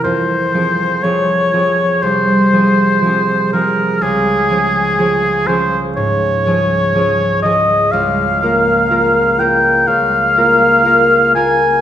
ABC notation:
X:1
M:4/4
L:1/8
Q:1/4=61
K:Dblyd
V:1 name="Oboe"
c2 d2 c3 B | A3 c d3 e | [K:Bbdor] f3 g f3 a |]
V:2 name="Harp"
[F,,C] [F,CA] [F,CA] [F,CA] C,, [F,CA] [F,CA] [F,CA] | D,, [F,DA] [F,DA] [F,DA] A,, [F,DA] [F,DA] [F,DA] | [K:Bbdor] D,, [B,FB] [B,FB] [B,FB] D,, [B,FB] [B,FB] [B,FB] |]